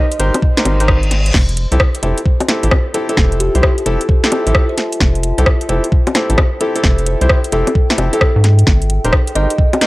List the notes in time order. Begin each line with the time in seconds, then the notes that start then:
Already playing: G#4 C5 G5 C6
0.12 closed hi-hat
0.19 G#1 D#4 G4 A#4 C5, closed hi-hat
0.34 closed hi-hat, high bongo
0.42 kick, reverse cymbal
0.57 D#4 G4 A#4 C5, snare, closed hi-hat
0.65 G#1, closed hi-hat, high bongo
0.80 D#4 G4 A#4 C5, closed hi-hat
0.88 C5, kick, cross-stick
1.03 closed hi-hat
1.11 snare, closed hi-hat
1.26 closed hi-hat
1.34 F1 F4, kick, snare, crash
1.49 closed hi-hat
1.57 E5, closed hi-hat
1.72 C2 C4 E4 G4 A4, closed hi-hat
1.77 G5, kick, cross-stick
1.95 closed hi-hat
2.02 F1 C4 E4 G4 A4 C5 A5, closed hi-hat
2.18 closed hi-hat
2.26 kick
2.40 closed hi-hat, high bongo
2.48 C4 E4 G4 A4 C5, snare, closed hi-hat
2.63 A1 C4 E4 G4 A4, closed hi-hat
2.71 kick, cross-stick, high bongo
2.94 C4 E4 G4 A4, closed hi-hat
3.09 C4 E4 G4 A4, closed hi-hat
3.17 F1, kick, snare
3.32 closed hi-hat
3.40 G4, closed hi-hat
3.55 C2 C4 E4 G4 C5, closed hi-hat
3.63 kick, cross-stick
3.78 closed hi-hat
3.86 F1 C4 E4 G4 A4, closed hi-hat
4.01 closed hi-hat
4.09 C5, kick
4.23 C4 E4 G4 A4 C5, snare, closed hi-hat
4.32 closed hi-hat, high bongo
4.47 A1 C4 E4 G4 A4, closed hi-hat
4.55 kick, cross-stick
4.69 C5
4.77 C5, snare, closed hi-hat
4.92 closed hi-hat
5.00 F1, kick, snare
5.15 closed hi-hat
5.23 closed hi-hat
5.38 C2 C4 E4 G4 A4, closed hi-hat
5.46 kick, cross-stick
5.61 closed hi-hat
5.69 F1 C4 E4 G4 A4 C5, closed hi-hat
5.84 closed hi-hat
5.92 kick
6.07 closed hi-hat, high bongo
6.15 C4 E4 G4 A4 C5, snare, closed hi-hat
6.30 A1 C4 E4 G4 A4, closed hi-hat
6.38 kick, cross-stick, high bongo
6.61 C4 E4 G4 A4, closed hi-hat
6.76 C4 E4 G4 A4, closed hi-hat
6.84 F1, kick, snare
6.98 closed hi-hat
7.06 C5, closed hi-hat
7.21 C2 C4 E4 G4 C5, closed hi-hat
7.29 kick, cross-stick
7.44 closed hi-hat
7.52 F1 C4 E4 G4 A4, closed hi-hat
7.67 closed hi-hat, high bongo
7.75 kick
7.90 C4 E4 G4 A4, snare, closed hi-hat
7.98 F1, closed hi-hat, high bongo
8.13 C4 E4 G4 A4, closed hi-hat
8.21 A4, kick, cross-stick
8.36 G#2
8.44 G#4, snare, closed hi-hat
8.59 C5 A#5, closed hi-hat
8.67 G#1, kick, snare
8.82 closed hi-hat
8.90 closed hi-hat
9.04 D#1 D#4 G4 A#4 C5, closed hi-hat
9.13 kick, cross-stick
9.27 closed hi-hat
9.35 G#1 D#4 G4 A#4 C5 D#5, closed hi-hat
9.50 closed hi-hat
9.58 kick
9.73 closed hi-hat, high bongo
9.81 D#4 G4 A#4 C5 D#5, snare, closed hi-hat